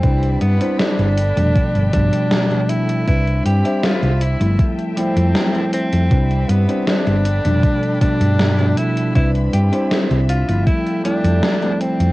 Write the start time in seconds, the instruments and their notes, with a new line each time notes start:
Already playing: tenor saxophone C4
0.03 fingered electric bass C2, string section C3 E4 D5 B5, tine electric piano G3 C4 D4 E4 B4, kick, closed hi-hat
0.23 closed hi-hat
0.41 fingered electric bass G2, tenor saxophone B3, closed hi-hat
0.60 tine electric piano G3 C4 D4 E4 C5, closed hi-hat
0.80 tenor saxophone D4, snare, closed hi-hat
0.99 fingered electric bass G1, closed hi-hat
1.17 string section F3 A4 G5, closed hi-hat
1.36 fingered electric bass F1, tine electric piano B2 F3 G3 A3 D4, closed hi-hat
1.56 kick, closed hi-hat
1.75 fingered electric bass G1, closed hi-hat
1.93 fingered electric bass G1, tine electric piano B2 F3 G3 A3 D4, tenor saxophone D4, kick, closed hi-hat
2.13 closed hi-hat
2.31 snare, closed hi-hat
2.50 tine electric piano B2 F3 G3 A3 D4, closed hi-hat
2.69 tenor saxophone E4, closed hi-hat
2.89 closed hi-hat
3.07 fingered electric bass C2, tine electric piano G3 C4 D4 E4 B4, string section C4 D4 E5 B5, tenor saxophone E4, kick, closed hi-hat
3.27 closed hi-hat
3.45 fingered electric bass G2, tenor saxophone G4, closed hi-hat
3.64 tine electric piano G3 C4 D4 C5 E5, closed hi-hat
3.83 tenor saxophone F4, snare, closed hi-hat
4.03 fingered electric bass C2, closed hi-hat
4.21 tenor saxophone E4, closed hi-hat
4.40 fingered electric bass G1, tine electric piano F3 G3 A3 C4 E4, closed hi-hat
4.59 string section F3 A4 G5, kick, closed hi-hat
4.79 closed hi-hat
4.97 tine electric piano F3 G3 A3 C4 E4, tenor saxophone C4, closed hi-hat
5.17 fingered electric bass F2, closed hi-hat
5.35 snare, closed hi-hat
5.54 tine electric piano F3 G3 A3 C4 E4, closed hi-hat
5.73 tenor saxophone C4, closed hi-hat
5.93 fingered electric bass F2, closed hi-hat
6.10 fingered electric bass C2, string section C3 D4 B5, tine electric piano G3 C4 D4 E4 B4, kick, closed hi-hat
6.31 closed hi-hat
6.49 fingered electric bass G2, tenor saxophone B3, closed hi-hat
6.68 tine electric piano G3 C4 D4 E4 C5, closed hi-hat
6.87 tenor saxophone D4, snare, closed hi-hat
7.07 fingered electric bass G1, closed hi-hat
7.24 string section F3 A4 G5, closed hi-hat
7.44 fingered electric bass F1, tine electric piano B2 F3 G3 A3 D4, closed hi-hat
7.63 kick, closed hi-hat
7.83 closed hi-hat
8.00 tine electric piano B2 F3 G3 A3 D4, tenor saxophone D4, kick, closed hi-hat
8.21 fingered electric bass G2, closed hi-hat
8.39 snare, closed hi-hat
8.58 tine electric piano B2 F3 G3 A3 D4, closed hi-hat
8.77 tenor saxophone E4, closed hi-hat
8.97 closed hi-hat
9.14 fingered electric bass C2, tine electric piano G3 C4 D4 E4 B4, string section C4 D4 E5, tenor saxophone E4, kick, closed hi-hat
9.35 closed hi-hat
9.53 fingered electric bass G2, tenor saxophone G4, closed hi-hat
9.72 tine electric piano G3 C4 D4 E4 C5, closed hi-hat
9.91 snare, closed hi-hat
10.11 fingered electric bass C2, closed hi-hat
10.29 tenor saxophone F4, closed hi-hat
10.48 fingered electric bass G1, tine electric piano F3 G3 A3 C4 E4, closed hi-hat
10.67 string section F3 A4 G5, tenor saxophone E4, kick, closed hi-hat
10.87 closed hi-hat
11.04 tine electric piano F3 G3 A3 C4 E4, tenor saxophone D4, closed hi-hat
11.24 fingered electric bass F2, closed hi-hat
11.43 snare, closed hi-hat
11.62 tine electric piano F3 G3 A3 C4 E4, closed hi-hat
11.81 tenor saxophone C4, closed hi-hat
12.00 fingered electric bass F2, closed hi-hat